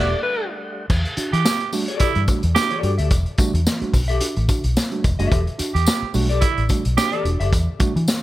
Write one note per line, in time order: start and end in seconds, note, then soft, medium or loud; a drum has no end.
0.00 0.13 E1 loud
0.00 0.86 G3 medium
0.00 0.86 A3 medium
0.00 0.86 D4 medium
0.00 0.14 G4 loud
0.00 0.13 A4 loud
0.00 0.22 D5 loud
0.00 0.13 E5 loud
0.00 0.86 F#5 medium
0.23 0.48 B4 medium
0.90 1.04 E2 medium
0.90 1.02 E3 medium
0.90 kick loud
0.90 crash medium
0.90 tambourine soft
1.05 closed hi-hat soft
1.17 1.30 D4 medium
1.17 1.30 F#4 medium
1.17 muted fingered electric bass stroke soft
1.17 closed hi-hat medium
1.17 tambourine medium
1.33 1.44 E3 medium
1.33 1.70 G4 loud
1.33 closed hi-hat medium
1.45 snare loud
1.45 tambourine loud
1.60 closed hi-hat soft
1.73 1.85 G3 loud
1.73 1.85 A3 medium
1.73 1.86 D4 medium
1.73 1.86 F#4 loud
1.73 open hi-hat medium
1.73 tambourine medium
1.88 2.08 G4 medium
1.88 2.08 A4 medium
1.88 2.07 D5 medium
1.88 closed hi-hat medium
2.00 2.07 D4 soft
2.00 2.22 E4 loud
2.00 2.07 F#4 soft
2.00 kick loud
2.00 closed hi-hat loud
2.00 tambourine medium
2.15 2.27 G2 medium
2.15 2.26 E3 medium
2.15 closed hi-hat soft
2.28 2.41 G3 medium
2.28 2.41 A3 medium
2.28 2.41 D4 medium
2.28 2.41 F#4 medium
2.28 kick loud
2.28 closed hi-hat medium
2.28 tambourine medium
2.43 2.55 E2 medium
2.43 closed hi-hat medium
2.55 2.68 D4 medium
2.55 2.69 F#4 medium
2.55 2.77 G4 loud
2.55 snare loud
2.55 tambourine medium
2.70 2.81 E3 medium
2.70 2.91 G4 medium
2.70 2.90 A4 medium
2.70 2.90 D5 medium
2.70 closed hi-hat soft
2.83 2.97 G2 medium
2.83 2.96 D4 medium
2.83 2.96 F#4 medium
2.83 closed hi-hat medium
2.98 3.10 D2 medium
2.98 3.08 G4 medium
2.98 3.08 A4 medium
2.98 3.07 E5 medium
2.98 closed hi-hat medium
3.11 3.25 E1 medium
3.11 3.23 E3 medium
3.11 kick medium
3.11 closed hi-hat medium
3.11 tambourine soft
3.26 closed hi-hat soft
3.38 3.51 G3 loud
3.38 3.51 A3 medium
3.38 3.51 D4 medium
3.38 3.51 F#4 loud
3.38 muted fingered electric bass stroke soft
3.38 kick loud
3.38 closed hi-hat medium
3.38 tambourine medium
3.54 3.65 E2 loud
3.54 closed hi-hat medium
3.67 3.79 E3 medium
3.67 snare loud
3.67 tambourine loud
3.81 3.91 G3 medium
3.81 3.91 A3 medium
3.81 3.92 D4 medium
3.81 3.92 F#4 medium
3.81 muted fingered electric bass stroke soft
3.81 closed hi-hat soft
3.93 4.18 B1 loud
3.93 4.00 D4 soft
3.93 4.00 F#4 soft
3.93 kick medium
3.93 open hi-hat medium
3.93 tambourine medium
4.08 4.21 G4 medium
4.08 4.21 A4 medium
4.08 4.20 E5 medium
4.08 closed hi-hat medium
4.21 4.34 D4 medium
4.21 4.34 F#4 medium
4.21 closed hi-hat loud
4.21 tambourine medium
4.36 4.48 A1 medium
4.36 4.47 E3 medium
4.36 closed hi-hat soft
4.48 4.61 D4 medium
4.48 4.62 F#4 medium
4.48 kick medium
4.48 closed hi-hat medium
4.48 tambourine medium
4.64 4.75 B1 medium
4.64 closed hi-hat medium
4.77 snare loud
4.77 tambourine medium
4.92 5.02 G3 medium
4.92 5.02 A3 medium
4.92 5.02 D4 medium
4.92 5.02 F#4 medium
4.92 closed hi-hat soft
5.04 5.18 E1 medium
5.04 5.17 E3 medium
5.04 kick medium
5.04 closed hi-hat medium
5.04 tambourine soft
5.19 5.30 F#1 medium
5.19 5.29 G3 medium
5.19 5.29 A3 medium
5.19 5.29 D4 medium
5.19 5.30 F#4 medium
5.19 5.39 G4 medium
5.19 5.39 A4 medium
5.19 5.38 E5 medium
5.19 closed hi-hat medium
5.31 5.46 E1 medium
5.31 5.44 E3 medium
5.31 kick loud
5.31 closed hi-hat medium
5.31 tambourine soft
5.47 closed hi-hat soft
5.58 5.71 D4 medium
5.58 5.72 F#4 medium
5.58 muted fingered electric bass stroke soft
5.58 closed hi-hat medium
5.58 tambourine medium
5.74 5.86 E2 medium
5.74 6.12 G4 loud
5.74 closed hi-hat medium
5.86 snare loud
5.86 tambourine loud
6.02 muted fingered electric bass stroke soft
6.14 6.39 B1 medium
6.14 6.27 G3 loud
6.14 6.27 A3 loud
6.14 6.27 D4 medium
6.14 6.27 F#4 loud
6.14 open hi-hat medium
6.14 tambourine medium
6.29 6.42 G4 medium
6.29 6.42 A4 medium
6.29 6.41 D5 medium
6.29 closed hi-hat soft
6.41 6.48 D4 soft
6.41 6.63 E4 loud
6.41 6.48 F#4 soft
6.41 kick loud
6.41 closed hi-hat loud
6.41 tambourine medium
6.57 6.69 A1 medium
6.57 6.68 E3 medium
6.57 closed hi-hat soft
6.69 6.82 G3 medium
6.69 6.82 A3 medium
6.69 6.82 D4 medium
6.69 6.82 F#4 medium
6.69 kick medium
6.69 closed hi-hat medium
6.69 tambourine medium
6.85 6.96 B1 medium
6.85 closed hi-hat medium
6.97 7.10 D4 medium
6.97 7.10 F#4 medium
6.97 7.19 G4 loud
6.97 snare loud
6.97 tambourine medium
7.12 7.23 E3 medium
7.12 7.25 G4 medium
7.12 7.24 A4 medium
7.12 7.24 D5 loud
7.12 closed hi-hat soft
7.24 7.39 E1 medium
7.24 7.37 D4 medium
7.24 7.37 F#4 medium
7.24 closed hi-hat medium
7.24 tambourine soft
7.40 7.51 F#1 medium
7.40 7.50 G4 medium
7.40 7.50 A4 medium
7.40 7.49 E5 medium
7.40 closed hi-hat medium
7.52 7.66 E2 medium
7.52 7.65 E3 medium
7.52 kick loud
7.52 closed hi-hat medium
7.52 tambourine soft
7.80 7.92 G3 medium
7.80 7.92 A3 medium
7.80 7.93 D4 medium
7.80 7.93 F#4 loud
7.80 muted fingered electric bass stroke soft
7.80 kick loud
7.80 closed hi-hat medium
7.80 tambourine medium
7.96 8.07 E3 loud
7.96 8.01 D4 soft
7.96 8.01 F#4 soft
7.96 closed hi-hat medium
8.08 8.20 E3 medium
8.08 snare loud
8.08 tambourine loud